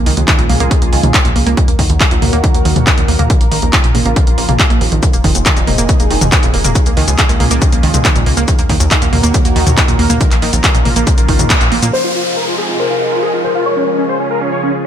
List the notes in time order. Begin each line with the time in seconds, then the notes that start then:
Already playing: C#3 F3 G#3 F4 G#4
0.06 C#2 D#3, open hi-hat
0.17 C#2 D#2, closed hi-hat
0.28 D#3, kick, clap, closed hi-hat
0.39 C#2 A#2, closed hi-hat
0.49 C#2 A#3, open hi-hat, mid tom
0.60 C#2 A#3, closed hi-hat
0.71 D#3, kick, closed hi-hat
0.82 C#2 A#3, closed hi-hat
0.93 C#2 D#3, open hi-hat
1.03 C#2 D#2, closed hi-hat, mid tom
1.14 D#3, kick, clap, closed hi-hat
1.25 C#2 A#2, closed hi-hat
1.36 C#2 A#3, open hi-hat
1.47 C#2 A#3, closed hi-hat
1.57 D#3 F#3 A#3 F#4 A#4, kick, closed hi-hat
1.68 D#2 A#3, closed hi-hat
1.79 D#2 D#3, kick, open hi-hat
1.90 D#2, closed hi-hat
2.00 D#3, kick, clap, closed hi-hat
2.11 D#2 A#2, closed hi-hat
2.22 D#2 A#3, open hi-hat, mid tom
2.33 D#2 A#3, closed hi-hat
2.44 D#3, kick, closed hi-hat
2.54 D#2 A#3, closed hi-hat
2.65 D#2 D#3, open hi-hat
2.76 D#2, closed hi-hat, mid tom
2.87 D#3, kick, clap, closed hi-hat
2.98 D#2 A#2, closed hi-hat
3.08 D#2 A#3, open hi-hat
3.19 D#2 A#3, closed hi-hat, mid tom
3.30 C#3 D#3 F3 F4, kick, closed hi-hat
3.41 A#1 A#3, closed hi-hat
3.52 A#1 D#3, open hi-hat
3.62 A#1 D#2, closed hi-hat
3.73 D#3, kick, clap, closed hi-hat
3.84 A#1 A#2, closed hi-hat
3.95 A#1 A#3, open hi-hat, mid tom
4.06 A#1 A#3, closed hi-hat
4.16 D#3, kick, closed hi-hat
4.27 A#1 A#3, closed hi-hat
4.38 A#1 A#3, open hi-hat
4.49 A#1 A#3, closed hi-hat, mid tom
4.59 A#2, kick, clap, closed hi-hat
4.70 A#1 A#3, closed hi-hat
4.81 A#1 D#2, open hi-hat
4.92 A#1 D#3, closed hi-hat
5.03 C3 D#3 G#3 D#4 G#4, kick, closed hi-hat, shaker
5.13 F1 A#3, closed hi-hat, shaker
5.24 F1 D#3, kick, open hi-hat
5.35 F1 D#2, closed hi-hat, shaker
5.46 D#3, kick, clap, closed hi-hat, shaker
5.57 F1 A#2, closed hi-hat, shaker
5.67 F1 A#3, open hi-hat, mid tom
5.78 F1 A#3, closed hi-hat, shaker
5.89 D#3, kick, closed hi-hat, shaker
6.00 F1 A#3, closed hi-hat, shaker
6.11 F1 D#3, open hi-hat
6.21 F1 D#2, closed hi-hat, mid tom, shaker
6.32 D#3, kick, clap, closed hi-hat, shaker
6.43 F1 A#2, closed hi-hat, shaker
6.54 F1 A#3, open hi-hat
6.64 F1 A#3, closed hi-hat, mid tom, shaker
6.75 C#3 D#3 F3 F4, kick, closed hi-hat, shaker
6.86 C#2 A#3, closed hi-hat, shaker
6.97 C#2 D#3, open hi-hat
7.08 C#2 D#2, closed hi-hat, shaker
7.18 D#3, kick, clap, closed hi-hat, shaker
7.29 C#2 A#2, closed hi-hat, shaker
7.40 C#2 A#3, open hi-hat, mid tom
7.51 C#2 A#3, closed hi-hat, shaker
7.62 D#3, kick, closed hi-hat, shaker
7.72 C#2 A#3, closed hi-hat, shaker
7.83 C#2 D#3, open hi-hat
7.94 C#2 D#2, closed hi-hat, mid tom, shaker
8.05 D#3, kick, clap, closed hi-hat, shaker
8.16 C#2 A#2, closed hi-hat, shaker
8.26 C#2 A#3, open hi-hat
8.37 C#2 A#3, closed hi-hat, shaker
8.48 D#3 F#3 A#3 F#4 A#4, kick, closed hi-hat, shaker
8.59 D#2 A#3, closed hi-hat, shaker
8.69 D#2 D#3, kick, open hi-hat
8.80 D#2, closed hi-hat, shaker
8.91 D#3, kick, clap, closed hi-hat, shaker
9.02 D#2 A#2, closed hi-hat, shaker
9.13 D#2 A#3, open hi-hat, mid tom
9.23 D#2 A#3, closed hi-hat, shaker
9.34 D#3, kick, closed hi-hat, shaker
9.45 D#2 A#3, closed hi-hat, shaker
9.56 D#2 D#3, open hi-hat
9.67 D#2, closed hi-hat, mid tom, shaker
9.77 D#3, kick, clap, closed hi-hat, shaker
9.88 D#2 A#2, closed hi-hat, shaker
9.99 D#2 A#3, open hi-hat
10.10 D#2 A#3, closed hi-hat, mid tom, shaker
10.21 C#3 D#3 F3 F4, kick, closed hi-hat, shaker
10.31 A#1 A#3, clap, closed hi-hat, shaker
10.42 A#1 D#3, open hi-hat
10.53 A#1 D#2, closed hi-hat, shaker
10.64 D#3, kick, clap, closed hi-hat, shaker
10.75 A#1 A#2, closed hi-hat, shaker
10.85 A#1 A#3, open hi-hat, mid tom
10.96 A#1 A#3, closed hi-hat, shaker
11.07 D#3, kick, closed hi-hat, shaker
11.18 A#1 A#3, closed hi-hat, shaker
11.29 A#1 D#3, kick, open hi-hat
11.39 A#1 D#2, closed hi-hat, mid tom, shaker
11.50 D#3, kick, clap, closed hi-hat, shaker
11.61 A#1 A#2, closed hi-hat, shaker
11.72 A#1 A#3, open hi-hat
11.82 A#2 A#3, closed hi-hat, shaker
11.93 C3 F3 G#3 D#4 G#4 C5, downlifter
12.04 F4
12.15 F4
12.26 F4
12.36 A#4
12.47 F4
12.58 G#4
12.69 F4
12.80 A#4 C5
12.90 F4
13.12 F4
13.23 G#4
13.34 F4
13.44 A#4 C5
13.55 F4
13.66 C#3 F4 G#4 C#5
13.77 C#4
13.88 C#4
13.98 C#4
14.09 C5
14.20 C#4
14.31 A#4
14.41 C#4
14.52 C#5
14.63 C#4